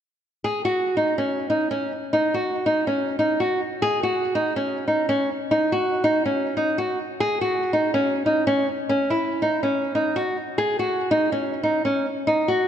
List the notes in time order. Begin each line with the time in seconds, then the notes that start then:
0.44 G#4
0.65 F#4
0.97 D#4
1.18 C#4
1.50 D#4
1.71 C#4
2.13 D#4
2.34 F#4
2.66 D#4
2.87 C#4
3.19 D#4
3.40 F#4
3.82 G#4
4.03 F#4
4.35 D#4
4.56 C#4
4.88 D#4
5.09 C#4
5.51 D#4
5.72 F#4
6.04 D#4
6.26 C#4
6.57 D#4
6.78 F#4
7.20 G#4
7.41 F#4
7.73 D#4
7.94 C#4
8.26 D#4
8.47 C#4
8.89 C#4
9.10 E4
9.42 D#4
9.63 C#4
9.95 D#4
10.16 F#4
10.58 G#4
10.79 F#4
11.11 D#4
11.32 C#4
11.63 D#4
11.85 C#4
12.27 D#4
12.48 F#4